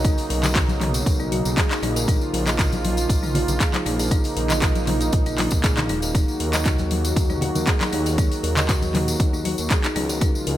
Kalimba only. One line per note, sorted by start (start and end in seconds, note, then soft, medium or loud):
0.05 0.17 D#4 loud
0.30 0.43 A#4 medium
0.43 0.50 D#5 medium
0.55 0.63 F#4 medium
1.20 1.26 D#4 medium
1.32 1.44 F#4 medium
1.57 1.70 G#4 medium
1.71 1.82 D#4 loud
1.83 1.95 D#4 loud
1.96 2.03 A#4 medium
2.08 2.21 D#4 loud
2.34 2.46 A#4 medium
2.47 2.54 D#5 medium
2.59 2.66 F4 medium
3.23 3.29 D#4 medium
3.35 3.47 F4 medium
3.61 3.73 G#4 medium
3.74 3.85 D#4 loud
3.86 3.98 D#4 loud
3.99 4.06 A#4 medium
4.11 4.24 D#4 loud
4.37 4.49 A#4 medium
4.50 4.57 D#5 medium
4.62 4.69 F4 medium
5.26 5.33 D#4 medium
5.38 5.50 F4 medium
5.64 5.77 G#4 medium
5.77 5.88 D#4 loud
5.89 6.01 D#4 loud
6.03 6.09 A#4 medium
6.15 6.27 D#4 loud
6.40 6.53 A#4 medium
6.54 6.60 D#5 medium
6.66 6.73 F#4 medium
7.30 7.36 D#4 medium
7.42 7.54 F#4 medium
7.67 7.80 G#4 medium
7.80 7.91 D#4 loud
7.92 8.05 D#4 loud
8.06 8.13 A#4 medium
8.18 8.31 D#4 loud
8.43 8.56 A#4 medium
8.57 8.63 D#5 medium
8.69 8.76 F#4 medium
9.33 9.40 D#4 medium
9.45 9.57 F#4 medium
9.70 9.83 G#4 medium
9.84 9.95 D#4 loud
9.96 10.08 D#4 loud
10.09 10.16 A#4 medium
10.21 10.34 D#4 loud
10.47 10.57 A#4 medium